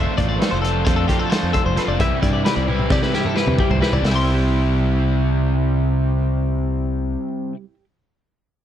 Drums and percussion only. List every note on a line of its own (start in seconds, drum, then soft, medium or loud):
0.18 kick medium
0.18 closed hi-hat medium
0.42 snare loud
0.42 closed hi-hat medium
0.64 closed hi-hat medium
0.87 kick loud
0.87 closed hi-hat medium
1.09 kick medium
1.09 closed hi-hat medium
1.32 snare loud
1.32 closed hi-hat medium
1.54 kick medium
1.54 closed hi-hat medium
1.77 snare soft
1.77 closed hi-hat medium
2.00 kick loud
2.00 closed hi-hat medium
2.23 kick medium
2.23 closed hi-hat medium
2.46 snare loud
2.46 closed hi-hat medium
2.68 high tom medium
2.79 high tom medium
2.90 kick loud
2.90 snare medium
3.02 snare medium
3.14 snare medium
3.25 mid tom medium
3.37 snare medium
3.48 mid tom medium
3.59 kick medium
3.71 floor tom medium
3.83 snare medium
3.93 floor tom medium
4.04 snare loud
4.04 open hi-hat medium